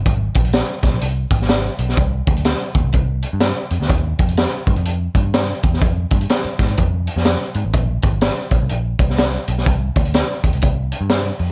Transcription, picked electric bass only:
X:1
M:4/4
L:1/16
Q:"Swing" 1/4=125
K:Ablyd
V:1 name="Picked electric bass" clef=bass
A,,,2 B,,,3 z C,, B,,, C,,2 A,,,4 _C,,2 | C,,2 D,,3 z E,, C,, C,,3 G,,2 z F,, D,, | E,,2 F,,3 z G,, F,,3 G,,4 =E,,2 | F,,2 G,,2 z2 A,,2 F,,3 F,,2 z A,, =A,,, |
B,,,2 A,,,3 z B,,, C,, B,,,2 C,,4 _C,,2 | C,,2 D,,3 z E,, C,, C,,3 G,,3 F,,2 |]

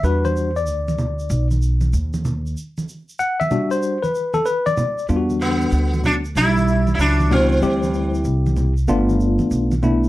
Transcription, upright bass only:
X:1
M:4/4
L:1/16
Q:"Swing 16ths" 1/4=95
K:Em
V:1 name="Upright bass" clef=bass
E,,4 D,,4 B,,,4 ^D,,4 | z16 | E,,4 D,,4 B,,,4 ^C,,4 | D,,4 C,,4 G,,,3 z B,,,4 |]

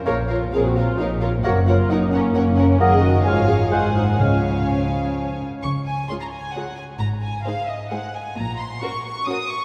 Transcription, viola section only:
X:1
M:3/4
L:1/16
Q:1/4=131
K:Gblyd
V:1 name="Viola section"
B2 F2 A G F2 E2 F2 | G2 F2 E2 D2 D4 | [K:Db] A2 G2 F2 A2 F2 E2 | D8- D2 z2 |
z4 [A,F]4 [A,F]4 | z4 [A,E]4 [A,E]4 | z4 [DG]4 [DG]4 |]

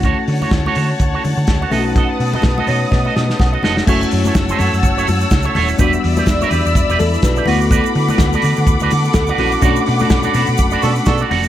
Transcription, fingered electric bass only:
X:1
M:4/4
L:1/16
Q:"Swing 16ths" 1/4=125
K:Bm
V:1 name="Fingered electric bass" clef=bass
D,,2 D,2 D,,2 D,2 D,,2 D, D, D,,2 B,,,2- | B,,,2 B,,2 B,,,2 B,,2 B,,2 B,,2 B,,,2 =F,,,2 | F,,,2 F,,2 F,,,2 F,, F,, F,,, F,,, F,,2 C,,2 ^D,,,2 | E,,,2 E,,2 E,,,2 E,, E,, E,,, E,,, E,,2 B,,,2 D,,2- |
D,,2 D,2 D,,2 D, D, D,, D,, D,2 D,,2 ^A,,,2 | B,,,2 B,,2 B,,,2 B,, B,, F,,,2 B,,2 B,,2 =F,,,2 |]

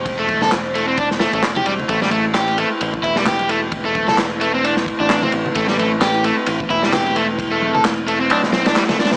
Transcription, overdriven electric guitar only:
X:1
M:4/4
L:1/16
Q:"Swing 16ths" 1/4=131
K:Am
V:1 name="Overdriven electric guitar"
z A,2 A z2 A, C D z A, A, z G G, z | A, G, A, z G2 A, z3 E G, G2 A, z | z A,2 A z2 A, C D z2 D2 C z2 | A, G, A, z G2 A, z3 E G, G2 A, z |
z A,2 A z2 A, C D z C D G, A, D z |]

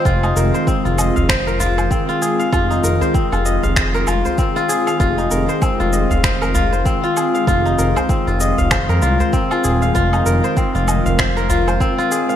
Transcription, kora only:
X:1
M:4/4
L:1/16
Q:"Swing 16ths" 1/4=97
K:Fm
V:1 name="Kora"
F E B c C F e f c B F c C F A f | F E B c C F e f c B F c C F A f | F E B c C F e f c B F c C F A f | F E B c C F e f c B F c C F A f |
F E B c C F e f c B F c C F A f |]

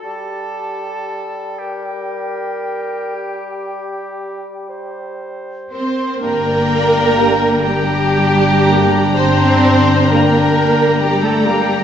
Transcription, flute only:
X:1
M:12/8
L:1/16
Q:3/8=39
K:Gm
V:1 name="Flute"
a6 g12 z4 c'2 | b6 g6 c'4 b4 g a g2 |]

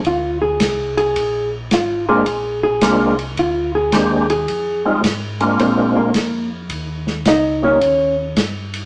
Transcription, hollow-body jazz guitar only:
X:1
M:4/4
L:1/8
Q:"Swing" 1/4=108
K:Bbmix
V:1 name="Hollow-body jazz guitar"
F A2 A2 z F A- | A A2 z F A2 A- | A z3 [Cc] [B,B]2 z | z2 [Ee] [_D_d]2 z3 |]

